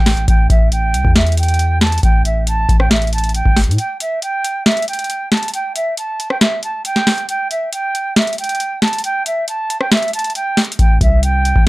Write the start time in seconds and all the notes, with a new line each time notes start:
Already playing: A1 G5
0.06 snare, closed hi-hat, open hi-hat
0.17 closed hi-hat
0.28 A1 G5, kick, closed hi-hat
0.50 A1 E5, kick, closed hi-hat
0.72 G5, closed hi-hat
0.94 C2, closed hi-hat
1.05 E2, kick
1.16 E5, snare, closed hi-hat
1.21 closed hi-hat
1.27 closed hi-hat
1.32 closed hi-hat
1.37 G5, closed hi-hat
1.43 closed hi-hat
1.48 closed hi-hat
1.54 closed hi-hat
1.59 closed hi-hat
1.81 A5, snare, closed hi-hat
1.87 closed hi-hat
1.92 closed hi-hat
1.98 closed hi-hat
2.03 A1 G5, kick, closed hi-hat
2.25 E5, closed hi-hat
2.47 A5, closed hi-hat
2.69 A1, kick, closed hi-hat
2.79 G5, cross-stick
2.91 E5, snare, closed hi-hat
2.96 closed hi-hat
3.02 closed hi-hat
3.07 closed hi-hat
3.13 A5, closed hi-hat
3.18 closed hi-hat
3.24 closed hi-hat
3.29 closed hi-hat
3.34 G5, closed hi-hat
3.46 G1, kick
3.57 snare, closed hi-hat, open hi-hat
3.64 A2, closed hi-hat
3.71 closed hi-hat
3.78 G5, closed hi-hat
4.00 E5, closed hi-hat
4.22 G5, closed hi-hat
4.45 closed hi-hat
4.66 E5, snare, closed hi-hat
4.71 closed hi-hat
4.77 closed hi-hat
4.82 closed hi-hat
4.88 G5, closed hi-hat
4.93 closed hi-hat
4.99 closed hi-hat
5.04 closed hi-hat
5.10 closed hi-hat
5.32 A5, snare, closed hi-hat
5.37 closed hi-hat
5.43 closed hi-hat
5.48 closed hi-hat
5.54 G5, closed hi-hat
5.75 E5, closed hi-hat
5.97 A5, closed hi-hat
6.20 closed hi-hat
6.30 G5, cross-stick
6.41 E5, snare, closed hi-hat
6.63 A5, closed hi-hat
6.85 G5, closed hi-hat
6.96 snare
7.07 snare, closed hi-hat, open hi-hat
7.18 closed hi-hat
7.29 G5, closed hi-hat
7.51 E5, closed hi-hat
7.72 G5, closed hi-hat
7.95 closed hi-hat
8.16 E5, snare, closed hi-hat
8.22 closed hi-hat
8.27 closed hi-hat
8.33 closed hi-hat
8.38 G5, closed hi-hat
8.44 closed hi-hat
8.49 closed hi-hat
8.55 closed hi-hat
8.60 closed hi-hat
8.82 A5, snare, closed hi-hat
8.88 closed hi-hat
8.93 closed hi-hat
8.98 closed hi-hat
9.04 G5, closed hi-hat
9.26 E5, closed hi-hat
9.48 A5, closed hi-hat
9.70 closed hi-hat
9.80 G5, cross-stick
9.92 E5, snare, closed hi-hat
9.97 closed hi-hat
10.02 closed hi-hat
10.08 closed hi-hat
10.13 A5, closed hi-hat
10.19 closed hi-hat
10.24 closed hi-hat
10.30 closed hi-hat
10.35 G5, closed hi-hat
10.57 snare, closed hi-hat, open hi-hat
10.65 closed hi-hat
10.72 closed hi-hat
10.79 A1 G5, kick, closed hi-hat
11.01 C2 E5, kick, closed hi-hat
11.23 G5, closed hi-hat
11.45 closed hi-hat
11.56 A1, kick